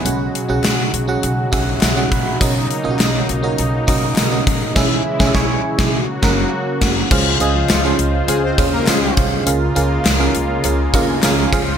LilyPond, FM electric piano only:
<<
  \new Staff \with { instrumentName = "FM electric piano" } { \time 4/4 \key fis \mixolydian \tempo 4 = 102 << { b''16 r2 r16 e''8 fis''8 b''8 | r1 | r1 | \key des \major r1 |
r2 r8 bes''16 aes''16 aes''8 f''8 | } \\ { <cis' fis' gis' fis''>8. <cis' fis' gis' fis''>4 <cis' fis' gis' fis''>8. <cis' fis' gis' fis''>8. <cis' fis' gis' fis''>8. | <cis' fis' ais' dis''>8. <cis' eis' fis' ais' dis''>4 <cis' fis' ais' dis''>8. <cis' fis' ais' dis''>8. <cis' fis' ais' dis''>8. | <cis' e' gis' e''>8 r16 <cis' e' gis' e''>16 <gis'' cis'''>8 r4 <cis' fis' ais' fis''>8 r4 | <des' f' aes' c'' f''>8 <des' f' aes' c'' ees''>8. <des' f' aes' c'' f''>8. <des' f' aes' c'' f''>8 <des' f' aes' c'' f''>8 <des' f' aes' c'' f''>4 |
<des' f' aes' bes' f''>8 <des' f' aes' bes' f''>8. <des' f' aes' bes' f''>8. <des' f' aes' bes' f''>8 <des' f' aes' bes' f''>8 <des' f' aes' bes' f''>8 <des' f' aes' c'' f''>8 | } >> }
  \new Staff \with { instrumentName = "FM electric piano" } { \clef bass \time 4/4 \key fis \mixolydian b,4. r2 r8 | b,4. r2 r8 | r1 | \key des \major des4. r2 r8 |
des4. r2 des8 | }
>>